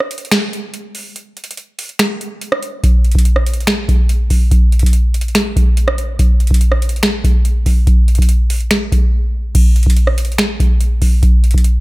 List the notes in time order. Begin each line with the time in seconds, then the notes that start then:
0.00 cross-stick
0.11 closed hi-hat
0.18 closed hi-hat
0.25 closed hi-hat
0.31 finger snap, snare, closed hi-hat
0.53 closed hi-hat
0.74 closed hi-hat
0.95 open hi-hat
1.16 closed hi-hat
1.37 closed hi-hat
1.44 closed hi-hat
1.51 closed hi-hat
1.57 closed hi-hat
1.79 closed hi-hat, open hi-hat
1.89 closed hi-hat
1.99 finger snap, snare, closed hi-hat
2.21 closed hi-hat
2.41 closed hi-hat
2.52 cross-stick
2.63 closed hi-hat
2.84 kick, closed hi-hat
3.05 closed hi-hat
3.12 kick, closed hi-hat
3.19 closed hi-hat
3.25 closed hi-hat
3.36 cross-stick
3.46 closed hi-hat
3.53 closed hi-hat
3.60 closed hi-hat
3.67 finger snap, snare, closed hi-hat
3.89 kick, closed hi-hat
4.09 closed hi-hat
4.30 kick, open hi-hat
4.51 kick, closed hi-hat
4.72 closed hi-hat
4.79 kick, closed hi-hat
4.86 closed hi-hat
4.93 closed hi-hat
5.14 closed hi-hat
5.21 closed hi-hat
5.28 closed hi-hat
5.35 finger snap, snare, closed hi-hat
5.56 kick, closed hi-hat
5.77 closed hi-hat
5.88 cross-stick
5.98 closed hi-hat
6.19 kick, closed hi-hat
6.40 closed hi-hat
6.47 kick, closed hi-hat
6.54 closed hi-hat
6.61 closed hi-hat
6.72 cross-stick
6.82 closed hi-hat
6.89 closed hi-hat
6.96 closed hi-hat
7.03 finger snap, snare, closed hi-hat
7.24 kick, closed hi-hat
7.45 closed hi-hat
7.66 kick, open hi-hat
7.87 kick, closed hi-hat
8.08 closed hi-hat
8.15 kick, closed hi-hat
8.22 closed hi-hat
8.29 closed hi-hat
8.50 closed hi-hat, open hi-hat
8.60 closed hi-hat
8.71 finger snap, snare, closed hi-hat
8.92 kick, closed hi-hat
9.55 kick, closed hi-hat, crash
9.76 closed hi-hat
9.83 kick, closed hi-hat
9.90 closed hi-hat
9.97 closed hi-hat
10.07 cross-stick
10.18 closed hi-hat
10.25 closed hi-hat
10.32 closed hi-hat
10.38 finger snap, snare, closed hi-hat
10.60 kick, closed hi-hat
10.81 closed hi-hat
11.02 kick, open hi-hat
11.23 kick, closed hi-hat
11.44 closed hi-hat
11.51 kick, closed hi-hat
11.58 closed hi-hat
11.64 closed hi-hat